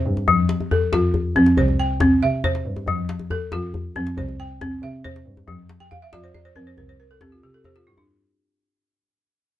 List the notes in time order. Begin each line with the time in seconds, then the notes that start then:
Already playing: C5 E5
0.06 G2
0.17 djembe tone
0.27 F2 F3, djembe slap, djembe bass
0.39 djembe slap
0.49 djembe slap
0.60 djembe tone
0.71 A4, djembe bass
0.92 F2 F4, djembe slap, djembe tone
1.14 djembe bass
1.35 F2 C4, djembe tone
1.46 djembe slap
1.57 C2 C5, djembe bass
1.68 djembe slap, djembe tone
1.79 G5
2.00 C4, djembe slap, djembe tone, djembe bass
2.23 C3 E5
2.44 C5, djembe tone, djembe bass
2.55 djembe slap
2.65 G2
2.76 djembe tone
2.87 F2 F3, djembe slap, djembe bass
2.98 djembe slap
3.09 djembe slap
3.19 djembe tone
3.30 A4, djembe bass
3.52 F2 F4, djembe slap, djembe tone
3.74 djembe bass
3.96 F2 C4, djembe tone
4.07 djembe slap
4.17 C2 C5, djembe bass
4.28 djembe slap, djembe tone
4.40 G5
4.61 C4, djembe slap, djembe tone, djembe bass
4.82 C3 E5
5.04 C5, djembe tone, djembe bass
5.16 djembe slap
5.25 G2
5.37 djembe tone
5.47 F2 F3, djembe bass
5.69 djembe slap
5.80 G5, djembe tone
5.91 F5, djembe bass
6.02 E5
6.13 F2 F4 D5, djembe slap, djembe tone
6.24 C5, djembe slap
6.34 D5, djembe bass
6.45 C5
6.56 F2 C4 A#4, djembe slap, djembe tone
6.67 C5
6.77 C2 A#4, djembe bass
6.88 C5, djembe slap
7.00 A#4
7.11 A4
7.21 C4 G4, djembe slap, djembe tone, djembe bass
7.32 F4
7.43 C3 G4
7.54 A4
7.64 G4 C5, djembe tone, djembe bass
7.76 F4, djembe slap
7.86 G2 E4
7.97 D4, djembe slap, djembe tone